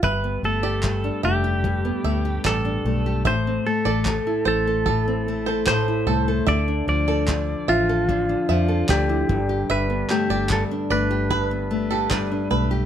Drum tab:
CP |--x---x-|--x---x-|--x---x-|-xx---x-|
BD |o-o-o-o-|o-o-o-o-|o-o-o-oo|--o-o-o-|